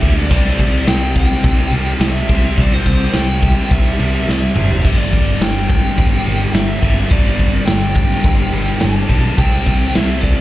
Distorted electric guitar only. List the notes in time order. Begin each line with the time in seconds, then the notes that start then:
0.01 G2 D3 G3
0.28 C3 G3 C4
2.28 C3 G3 C4
2.56 C3 G3 C4
4.55 C3 G3 C4
4.84 G2 D3 G3
6.81 G2 D3 G3
7.10 G2 D3 G3
9.07 G2 D3 G3
9.35 C3 G3 C4